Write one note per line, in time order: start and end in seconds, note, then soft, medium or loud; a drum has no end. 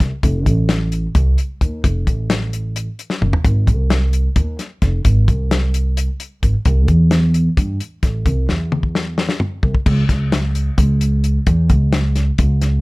0.00 0.10 C2 medium
0.00 kick medium
0.00 snare soft
0.00 closed hi-hat medium
0.23 0.46 F1 medium
0.23 kick medium
0.23 closed hi-hat medium
0.46 1.05 A1 medium
0.46 kick medium
0.46 closed hi-hat medium
0.69 snare medium
0.69 closed hi-hat medium
0.92 closed hi-hat medium
1.15 1.35 C2 medium
1.15 kick medium
1.15 closed hi-hat medium
1.38 closed hi-hat medium
1.61 1.81 D#2 medium
1.61 kick medium
1.61 closed hi-hat medium
1.84 2.04 F1 medium
1.84 kick medium
1.84 closed hi-hat medium
2.07 2.86 A1 medium
2.07 kick medium
2.07 closed hi-hat medium
2.30 snare medium
2.30 closed hi-hat medium
2.53 closed hi-hat medium
2.76 closed hi-hat medium
2.99 closed hi-hat soft
3.10 snare medium
3.21 3.31 F#1 medium
3.21 mid tom medium
3.33 floor tom medium
3.44 3.69 G#1 medium
3.44 kick medium
3.44 closed hi-hat medium
3.67 4.26 C2 medium
3.67 kick medium
3.67 closed hi-hat medium
3.90 snare medium
3.90 closed hi-hat medium
4.13 closed hi-hat medium
4.36 4.56 D#2 medium
4.36 kick loud
4.36 closed hi-hat medium
4.59 snare soft
4.59 closed hi-hat soft
4.82 5.02 F1 medium
4.82 kick medium
4.82 snare soft
4.82 closed hi-hat medium
5.05 5.24 G#1 medium
5.05 kick medium
5.05 closed hi-hat medium
5.28 6.07 C2 medium
5.28 kick medium
5.28 closed hi-hat medium
5.51 snare medium
5.51 closed hi-hat medium
5.74 closed hi-hat medium
5.97 closed hi-hat medium
6.20 closed hi-hat medium
6.43 6.52 G#1 medium
6.43 kick medium
6.43 closed hi-hat medium
6.65 6.88 C2 medium
6.65 kick medium
6.65 closed hi-hat medium
6.88 7.47 E2 medium
6.88 kick medium
6.88 closed hi-hat medium
7.11 snare loud
7.11 closed hi-hat medium
7.34 closed hi-hat medium
7.57 7.77 G2 medium
7.57 kick medium
7.57 closed hi-hat medium
7.80 closed hi-hat soft
8.03 8.23 A1 medium
8.03 kick medium
8.03 snare soft
8.03 closed hi-hat medium
8.26 8.45 C2 medium
8.26 kick medium
8.26 closed hi-hat medium
8.49 9.27 E2 medium
8.49 snare medium
8.72 high tom medium
8.83 kick medium
8.95 snare medium
9.18 snare medium
9.29 snare medium
9.40 mid tom medium
9.63 9.73 C2 medium
9.63 kick medium
9.75 kick medium
9.86 10.06 C#2 loud
9.86 kick medium
9.86 crash medium
10.09 10.68 C#2 medium
10.09 kick medium
10.09 snare soft
10.09 closed hi-hat medium
10.32 snare loud
10.32 closed hi-hat medium
10.55 closed hi-hat medium
10.78 11.37 C#2 medium
10.78 kick loud
10.78 closed hi-hat medium
11.01 closed hi-hat medium
11.24 closed hi-hat medium
11.47 11.67 E2 medium
11.47 kick medium
11.47 closed hi-hat medium
11.70 12.29 C#2 medium
11.70 kick medium
11.70 closed hi-hat medium
11.93 snare loud
11.93 closed hi-hat medium
12.16 snare soft
12.16 closed hi-hat medium
12.38 12.78 C#2 medium
12.38 kick medium
12.38 closed hi-hat medium
12.61 snare soft
12.61 closed hi-hat medium